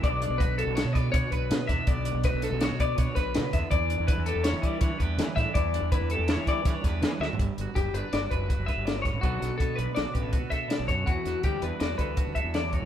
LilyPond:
<<
  \new Staff \with { instrumentName = "Clean electric guitar" } { \time 5/4 \key b \minor \tempo 4 = 163 d''4 b'8 a'8 cis''8 d''8 cis''8 b'4 e''8 | d''4 b'8 a'8 cis''8 d''8 cis''8 b'4 e''8 | d''4 b'8 a'8 cis''8 d''8 cis''8 b'4 e''8 | d''4 b'8 a'8 cis''8 d''8 cis''8 b'4 e''8 |
r4 g'8 b'8 d''8 b'4 e''8 d''8 cis''8 | fis'4 a'8 b'8 d''8 b'4 e''8 d''8 cis''8 | fis'4 g'8 b'8 d''8 b'4 e''8 d''8 cis''8 | }
  \new Staff \with { instrumentName = "Clean electric guitar" } { \time 5/4 \key b \minor << { r8 d'8 fis'8 a'8 fis'4 d'8 b'4 d'8 | r8 d'8 fis'8 a'8 fis'4 d'8 b'4. | r8 d'8 e'8 g'8 e'4 d'8 g'4 d'8 | r8 d'8 e'8 g'8 e'4 d'8 g'4.~ |
g'8 fis'4 d'8 fis'8 b'8 fis'8 b'4. | <b d' fis' a'>8 fis'4 d'8 fis'8 g'16 a'16 fis'8 a'4 fis'8 | r8 fis'4 d'8 fis'8 a'8 fis'8 a'4 fis'8 | } \\ { b,2~ b,8 b4. b,4 | b,2~ b,8 b4. cis8 d8 | e2~ e8 g4. e4 | e2~ e8 g4. e8 fis8 |
g,4 g2. g,8 a,8 | b,4 b2. b,4 | e4 g2. e4 | } >> }
  \new Staff \with { instrumentName = "Fingered electric bass" } { \clef bass \time 5/4 \key b \minor b,,8. b,,16 r16 b,,8 b,,8 b,8. b,16 r16 b,,8 b,16 r16 e,16 r16 | b,,8. b,,16 r16 b,,8 b,,8 b,8. b,16 r16 b,,8 b,16 r16 e,16 r16 | e,8. e,16 r16 e,8 e,8 e8. e16 r16 e,8 e16 r16 a,16 r16 | e,8. e,16 r16 e,8 e,8 e8. e16 r16 e,8 e16 r16 d,16 r16 |
g,,16 r16 g,,16 r16 fis,,8 g,,16 r16 g,,8 fis,,8 r16 fis,,16 r16 g,,4 a,,16 | b,,8 b,,16 r16 b,8 b,,16 r16 b,,16 r16 a,,8 r4 r16 b,,16 fis,8 | e,16 r16 e,16 r16 d,8 e,16 r16 e,8 d,8 r16 d,16 r16 e,4 b,,16 | }
  \new DrumStaff \with { instrumentName = "Drums" } \drummode { \time 5/4 <hh bd>8 hh8 <hh bd>8 hh8 <hh sn>8 <hh bd sn>8 <hh bd>8 <hh bd>8 <hh sn>8 <hh bd sn>8 | <hh bd>8 hh8 <hh bd sn>8 <hh sn>8 <hh sn>8 <hh bd>8 <hh bd>8 <hh bd sn>8 <hh sn>8 <hh bd sn>8 | <hh bd>8 hh8 <hh bd>8 hh8 <hh sn>8 <hh bd>8 <hh bd>8 <hh bd>8 <hh sn>8 <hh bd sn>8 | <hh bd>8 hh8 <hh bd>8 hh8 <hh sn>8 <hh bd sn>8 <hh bd sn>8 <hh bd sn>8 \tuplet 3/2 { <hh sn>16 r16 r16 sn16 r16 tomfh16 } |
<hh bd>8 hh8 <hh bd sn>8 hh8 <hh sn>8 <hh bd>8 <hh bd>8 <hh bd sn>8 <hh sn>8 <hh bd sn>8 | <hh bd>8 <hh sn>8 <hh bd>8 hh8 <hh sn>8 <hh bd>8 <hh bd>8 <hh bd sn>8 <hh sn>8 <hh bd sn>8 | <hh bd>8 <hh sn>8 <hh bd>8 hh8 <hh sn>8 <hh bd>8 <hh bd>8 <hh bd>8 <hh sn>8 <hh bd>8 | }
>>